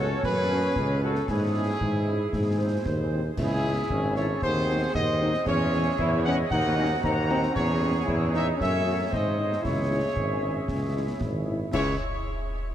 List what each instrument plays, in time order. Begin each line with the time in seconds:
Already playing: tuba C#2, trombone section C#4, flute section F#4, trumpet section A4, woodwind section A4 C#5
0.23 tuba F#2, flute section G#4, trumpet section B4, concert bass drum, snare
0.51 french horn section A3 C#4 F#4
0.76 tuba C#2, concert bass drum, snare
1.03 french horn section A3 C#4 F#4, flute section F#4, trumpet section A4
1.15 snare
1.28 tuba G#2, trombone section G#3, flute section E4, woodwind section G#4 C#5, trumpet section G#4, concert bass drum, snare, crash
1.55 french horn section G#3 C#4 E4
1.81 tuba G#2, woodwind section G#4, concert bass drum
2.07 french horn section G#3 C#4 E4
2.33 tuba G#2, concert bass drum, snare
2.59 french horn section G#3 C4 D#4, woodwind section C5
2.86 tuba D#2, woodwind section C5, concert bass drum, snare
3.13 french horn section G#3 C4 D#4
3.37 tuba C#2, trombone section E4, flute section E4, woodwind section G#4 E5, trumpet section G#4, concert bass drum, snare, crash
3.65 french horn section G#3 C#4 E4
3.90 tuba G#1, trombone section C#4, concert bass drum
4.16 french horn section G#3 C#4 E4, flute section A4, trumpet section C#5, snare
4.42 tuba D#2, trombone section C4, flute section G#4, trumpet section C5, woodwind section F#5, concert bass drum, snare
4.69 french horn section F#3 G#3 D#4
4.95 tuba D#2, trombone section G#3, flute section C5, trumpet section D#5, concert bass drum, snare
5.20 french horn section F#3 G#3 D#4, trombone section C4
5.34 snare
5.46 tuba E2, trombone section C#4, flute section G#4, woodwind section G#4 E5, trumpet section C#5, concert bass drum, snare, crash
5.74 french horn section E3 G#3 C#4
5.98 tuba E2, trombone section E4, concert bass drum
6.24 french horn section E3 G#3 C#4, trombone section C#4, flute section D#5, trumpet section F#5
6.50 tuba D#2, trombone section D#4, woodwind section F#4 C5, flute section D#5, trumpet section F#5, concert bass drum, snare
6.77 french horn section F#3 C4 D#4, trombone section C#4
7.03 tuba D#2, trombone section C4, flute section F#5, trumpet section A#5, concert bass drum, snare
7.29 french horn section F#3 C4 D#4, trombone section C4
7.43 snare
7.53 tuba E2, trombone section C#4, flute section G#4, woodwind section G#4 C#5, trumpet section C#5, concert bass drum, snare, crash
7.81 french horn section G#3 C#4 G#4
8.05 tuba E2, trombone section E4, concert bass drum
8.32 french horn section G#3 C#4 G#4, trombone section D#4, flute section C#5, trumpet section E5, snare
8.57 tuba F#2, trombone section C#4, woodwind section A4 C#5, flute section C#5, concert bass drum, snare
8.61 trumpet section E5
8.86 french horn section A3 C#4 F#4
9.11 tuba G#2, trombone section C4, flute section C5, woodwind section C5 D#5, trumpet section D#5, concert bass drum, snare
9.36 french horn section G#3 C4 D#4, trombone section D#4
9.52 snare
9.61 tuba C#2, trombone section E4, flute section G#4, trumpet section C#5, concert bass drum, snare, crash
9.66 woodwind section G#4 E5
9.91 french horn section G#3 C#4 E4
10.15 tuba G#1, trombone section C#4, concert bass drum
10.43 french horn section G#3 C#4 E4
10.68 tuba C#2, concert bass drum, snare
10.94 french horn section G#3 C#4 E4, trombone section E4
11.21 tuba G#1, trombone section E4, concert bass drum, snare
11.46 french horn section G#3 C#4 E4
11.72 tuba C#2, french horn section G#3 C#4 E4, trombone section G#3 E4, woodwind section G#4 E5, trumpet section C#5, flute section C#5, concert bass drum, snare, crash